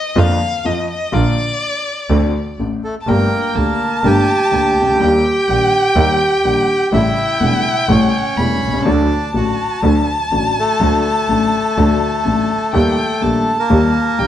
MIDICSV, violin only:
0, 0, Header, 1, 2, 480
1, 0, Start_track
1, 0, Tempo, 483481
1, 1122, Time_signature, 4, 2, 24, 8
1, 14168, End_track
2, 0, Start_track
2, 0, Title_t, "Violin"
2, 0, Program_c, 0, 40
2, 0, Note_on_c, 0, 75, 102
2, 187, Note_on_c, 0, 77, 102
2, 202, Note_off_c, 0, 75, 0
2, 655, Note_on_c, 0, 75, 94
2, 670, Note_off_c, 0, 77, 0
2, 889, Note_off_c, 0, 75, 0
2, 900, Note_on_c, 0, 75, 92
2, 1128, Note_on_c, 0, 74, 103
2, 1143, Note_off_c, 0, 75, 0
2, 2570, Note_off_c, 0, 74, 0
2, 2987, Note_on_c, 0, 81, 69
2, 3061, Note_on_c, 0, 79, 88
2, 3075, Note_off_c, 0, 81, 0
2, 3528, Note_on_c, 0, 81, 114
2, 3543, Note_off_c, 0, 79, 0
2, 4968, Note_off_c, 0, 81, 0
2, 4973, Note_on_c, 0, 79, 116
2, 6841, Note_off_c, 0, 79, 0
2, 6872, Note_on_c, 0, 79, 123
2, 8314, Note_on_c, 0, 83, 97
2, 8329, Note_off_c, 0, 79, 0
2, 8784, Note_off_c, 0, 83, 0
2, 8790, Note_on_c, 0, 81, 117
2, 12609, Note_off_c, 0, 81, 0
2, 12651, Note_on_c, 0, 79, 102
2, 13129, Note_on_c, 0, 81, 98
2, 13144, Note_off_c, 0, 79, 0
2, 14085, Note_on_c, 0, 79, 86
2, 14100, Note_off_c, 0, 81, 0
2, 14168, Note_off_c, 0, 79, 0
2, 14168, End_track
0, 0, End_of_file